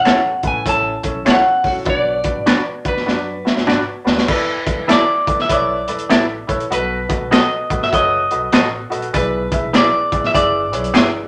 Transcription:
Already playing: grand piano A2, clean electric guitar F#5
0.04 upright bass E2, grand piano C#4 E4 A4 C#5, clean electric guitar C#4 E4 A4 C#5, finger snap, snare, closed hi-hat
0.43 upright bass A2, grand piano C#4 E4 A4 B4, kick, closed hi-hat
0.47 clean electric guitar G#5
0.65 upright bass A1, grand piano C#4 E4 A4 C#5, clean electric guitar A5, kick, closed hi-hat
1.03 upright bass B1, grand piano C#4 E4 A4 C#5, kick, closed hi-hat
1.25 grand piano C#4 E4 A4 C#5, clean electric guitar C#4 E4 A4 C#5, finger snap, snare, closed hi-hat
1.30 clean electric guitar F#5
1.63 upright bass C#2, grand piano C#4 E4 A4 C#5, kick, open hi-hat
1.67 clean electric guitar F#4
1.76 upright bass A#1
1.85 upright bass B1, grand piano B2 D4 F#4 B4 D5, kick, closed hi-hat
1.90 clean electric guitar D5
2.24 grand piano D4 F#4 B4 D5, kick, closed hi-hat
2.36 upright bass G#1
2.46 grand piano D4 F#4 B4 D5, clean electric guitar D4 F#4 B4 D5, finger snap, snare, closed hi-hat
2.67 muted upright bass stroke
2.84 upright bass F#1, grand piano D4 F#4 B4 D5, clean electric guitar B4, kick, closed hi-hat
2.97 snare
3.06 upright bass F#2, grand piano D4 F#4 B4 D5, snare
3.44 grand piano D4 F#4 B4 E5, muted upright bass stroke, snare
3.57 upright bass F#1, snare
3.67 upright bass G#1, clean electric guitar D4 F#4 B4 D5, grand piano D4 F#4 B4 D5, finger snap, snare
4.04 upright bass D#2, grand piano D4 F#4 B4 D5, snare
4.18 snare
4.27 grand piano E3 E4 A4 B4 D5, clean electric guitar B4, kick, crash
4.65 grand piano E4 A4 B4 D5, kick, closed hi-hat
4.78 upright bass E2
4.87 clean electric guitar B3 E4 A4 D5, grand piano E4 A4 B4 E5, finger snap, snare, closed hi-hat
4.92 clean electric guitar D5
5.26 upright bass D2, grand piano E4 A4 B4 D5, kick, closed hi-hat
5.39 upright bass C#2, clean electric guitar E5, snare
5.49 upright bass B1, grand piano E4 A4 B4 C#5, clean electric guitar D5, kick, closed hi-hat
5.88 upright bass E2, grand piano E4 A4 B4 D5, closed hi-hat
5.99 closed hi-hat
6.09 upright bass A1, clean electric guitar B3 E4 A4 D5, grand piano E4 A4 B4 E5, finger snap, snare, closed hi-hat
6.47 upright bass A#1, grand piano E4 A4 B4 C#5, kick, closed hi-hat
6.60 closed hi-hat
6.70 upright bass B1, grand piano B2 F#4 A4 B4 D#5, clean electric guitar B4, closed hi-hat
7.09 grand piano F#4 A4 B4 D#5, kick, closed hi-hat
7.21 upright bass B1
7.31 clean electric guitar B3 F#4 A4 D#5, grand piano F#4 A4 B4 D#5, finger snap, snare, closed hi-hat
7.70 upright bass A1, grand piano F#4 A4 B4 F#5, kick, closed hi-hat
7.81 upright bass G#1, clean electric guitar E5, snare
7.92 upright bass F#1, grand piano F#4 A4 B4 C#5, clean electric guitar D#5, kick, closed hi-hat
8.31 upright bass B1, grand piano F#4 A4 B4 D#5, closed hi-hat
8.52 upright bass A1, clean electric guitar B3 F#4 A4 D#5, grand piano F#4 A4 B4 D#5, finger snap, snare, closed hi-hat
8.90 upright bass A#1, grand piano F#4 A4 B4 D#5, closed hi-hat
9.02 closed hi-hat
9.13 upright bass B1, grand piano B2 E4 G#4 B4 D5, clean electric guitar B4, kick, closed hi-hat
9.51 grand piano E4 G#4 B4 E5, kick, closed hi-hat
9.64 upright bass B1
9.73 clean electric guitar B3 E4 G#4 D5, grand piano E4 G#4 B4 D5, finger snap, snare, closed hi-hat
10.12 upright bass A1, grand piano E4 G#4 B4 D5, kick, closed hi-hat
10.24 upright bass G#1, clean electric guitar E5, snare
10.34 upright bass F#1, grand piano E4 G#4 B4 D5, clean electric guitar D5, kick, closed hi-hat
10.72 upright bass B1, grand piano E4 G#4 B4 C#5, closed hi-hat
10.84 closed hi-hat
10.94 upright bass G1, clean electric guitar B3 E4 G#4 D5, grand piano E4 G#4 B4 D5, finger snap, snare, closed hi-hat

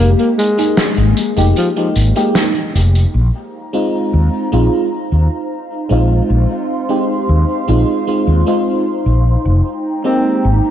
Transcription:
Already playing: fm electric piano G#3 A#3 D#4 G4
0.00 fretless electric bass F1, alto saxophone A#3
0.19 alto saxophone A#3, closed hi-hat
0.38 alto saxophone G#3, closed hi-hat, tambourine
0.58 fm electric piano G#3 A#3 D#4 G#4, closed hi-hat, tambourine
0.77 snare, closed hi-hat, tambourine
0.97 fretless electric bass G#1, closed hi-hat
1.17 closed hi-hat, tambourine
1.37 fretless electric bass F1, fm electric piano G#3 A#3 D#4 G4, closed hi-hat, tambourine
1.56 alto saxophone F3, closed hi-hat, tambourine
1.76 alto saxophone F3, fm electric piano G#3 A#3 D#4 G4, closed hi-hat
1.96 fretless electric bass G#1, closed hi-hat, tambourine
2.16 fm electric piano G#3 A#3 D#4 G4, closed hi-hat, tambourine
2.35 snare, closed hi-hat, tambourine
2.55 closed hi-hat
2.75 fretless electric bass F1, closed hi-hat, tambourine
2.95 closed hi-hat, tambourine
3.13 fretless electric bass A#1, ambient pad D#4 C5 F5 A#5
3.73 fm electric piano G#3 C4 D#4 F4
4.14 fretless electric bass D#2
4.52 fretless electric bass A#1, fm electric piano G#3 C4 D#4 F4
5.12 fretless electric bass D#2
5.89 fretless electric bass A#1, fm electric piano G#3 C4 D#4 F4
6.30 fretless electric bass A#1, ambient pad C6
6.89 fm electric piano G#3 C4 D#4 G4
7.29 fretless electric bass D#2
7.68 fretless electric bass A#1, fm electric piano G#3 C4 D#4 F4
8.07 fm electric piano G#3 C4 D#4 F4
8.27 fretless electric bass D#2
8.46 fm electric piano G#3 C4 D#4 F4
9.06 fretless electric bass A#1
9.45 fretless electric bass F1, ambient pad G#3 G5 A#5
10.04 fm electric piano G#3 A#3 D#4 G4, alto saxophone C4
10.45 fretless electric bass G#1

